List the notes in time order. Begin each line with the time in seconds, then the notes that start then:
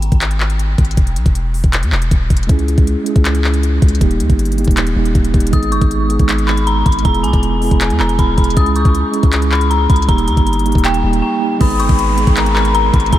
Already playing: G#1
0.02 closed hi-hat
0.12 G#1, kick, closed hi-hat
0.21 clap, closed hi-hat
0.31 closed hi-hat
0.40 clap
0.50 closed hi-hat
0.59 closed hi-hat
0.78 G#1, kick, closed hi-hat
0.85 closed hi-hat
0.91 closed hi-hat
0.97 E1, kick, closed hi-hat
1.07 closed hi-hat
1.16 B1, closed hi-hat
1.26 E1, kick, closed hi-hat
1.35 closed hi-hat
1.54 open hi-hat
1.64 E1, kick, closed hi-hat
1.73 clap, closed hi-hat
1.83 E2, closed hi-hat
1.92 E1, clap
2.02 closed hi-hat
2.11 D#1, kick, closed hi-hat
2.30 E1, kick, closed hi-hat
2.37 closed hi-hat
2.43 closed hi-hat
2.47 C#2 G#3 C#4 E4, kick, closed hi-hat
2.51 G#4
2.59 closed hi-hat
2.68 closed hi-hat
2.78 C#2, kick, closed hi-hat
2.87 closed hi-hat
3.04 G#3 C#4 E4, closed hi-hat
3.08 G#4
3.16 C#2, kick, closed hi-hat
3.25 clap, closed hi-hat
3.35 closed hi-hat
3.44 clap
3.54 closed hi-hat
3.63 closed hi-hat
3.82 C#2, kick, closed hi-hat
3.88 closed hi-hat
3.95 G3, closed hi-hat
4.00 D#1 A#3 D#4 G4, kick, closed hi-hat
4.11 closed hi-hat
4.20 D#2, closed hi-hat
4.30 G1, kick, closed hi-hat
4.39 closed hi-hat
4.45 closed hi-hat
4.52 closed hi-hat
4.56 G3 A#3 D#4, closed hi-hat, open hi-hat
4.60 G4
4.64 D#1, kick, closed hi-hat
4.71 closed hi-hat
4.77 clap, closed hi-hat
4.87 closed hi-hat
4.95 D#1 G3 A#3 D#4
4.99 G4
5.05 closed hi-hat
5.15 D#1, kick, closed hi-hat
5.25 closed hi-hat
5.32 D#1 G3 A#3 D#4, kick, closed hi-hat
5.36 G4
5.40 closed hi-hat
5.47 closed hi-hat
5.51 G#1 G#3 B3 D#4 D#6, kick, closed hi-hat
5.55 G#4
5.63 closed hi-hat
5.72 G1 C#6, closed hi-hat
5.81 G#1, kick, closed hi-hat
5.91 closed hi-hat
6.07 G#3 B3 D#4, closed hi-hat
6.12 G#4
6.19 G#1, kick, closed hi-hat
6.29 clap, closed hi-hat
6.38 closed hi-hat
6.47 B5, clap
6.57 closed hi-hat
6.67 A#5, closed hi-hat
6.86 G#1 B5, kick, closed hi-hat
6.92 closed hi-hat
6.99 closed hi-hat
7.03 E1 G#3 B3 E4 A#5, kick, closed hi-hat
7.07 G#4
7.15 closed hi-hat
7.23 B1 G#5, closed hi-hat
7.33 E1, kick, closed hi-hat
7.43 closed hi-hat
7.61 G#3 B3 E4, open hi-hat
7.65 G#4
7.71 E1, kick, closed hi-hat
7.81 clap, closed hi-hat
7.90 E2, closed hi-hat
7.98 E1 G#3 B3 E4 A#5, clap
8.02 G#4
8.09 closed hi-hat
8.19 D#1 B5, kick, closed hi-hat
8.35 E1 G#3 B3 E4 B5, kick, closed hi-hat
8.40 G#4
8.44 closed hi-hat
8.50 closed hi-hat
8.55 C#2 G#3 C#4 E4 D#6, kick, closed hi-hat
8.59 G#4
8.66 closed hi-hat
8.76 C#6, closed hi-hat
8.85 C#2, kick, closed hi-hat
8.95 closed hi-hat
9.11 G#3 C#4 E4, closed hi-hat
9.16 G#4
9.23 C#2, kick, closed hi-hat
9.33 clap, closed hi-hat
9.42 closed hi-hat
9.52 B5, clap
9.61 closed hi-hat
9.70 A#5, closed hi-hat
9.90 C#2 B5, kick, closed hi-hat
9.96 closed hi-hat
10.02 G3, closed hi-hat
10.08 D#1 A#3 D#4 G4 A#5, kick, closed hi-hat
10.18 closed hi-hat
10.28 D#2 A#5, closed hi-hat
10.37 G1, kick, closed hi-hat
10.47 closed hi-hat
10.53 closed hi-hat
10.59 closed hi-hat
10.64 G3 A#3 D#4, closed hi-hat, open hi-hat
10.68 G4
10.72 D#1, kick, closed hi-hat
10.78 closed hi-hat
10.85 G5, clap, closed hi-hat
10.94 closed hi-hat
11.02 D#1 G3 A#3 D#4
11.06 G4
11.13 closed hi-hat
11.22 G5
11.39 G3 A#3 D#4
11.43 G4
11.59 G#1 G#3 B3 D#4 B5 D#6, kick, closed hi-hat, downlifter
11.63 G#4
11.70 closed hi-hat
11.80 G1 C#6, closed hi-hat
11.89 G#1, kick, closed hi-hat
11.99 closed hi-hat
12.15 G#3 B3 D#4, closed hi-hat
12.19 G#4
12.27 G#1, kick, closed hi-hat
12.36 A#5, clap, closed hi-hat
12.46 closed hi-hat
12.55 B5, clap
12.65 closed hi-hat
12.75 A#5, closed hi-hat
12.94 G#1 B5, kick, closed hi-hat
13.00 closed hi-hat
13.06 G#3, closed hi-hat
13.12 E1 B3 E4 G#4 G#5 A#5, kick, closed hi-hat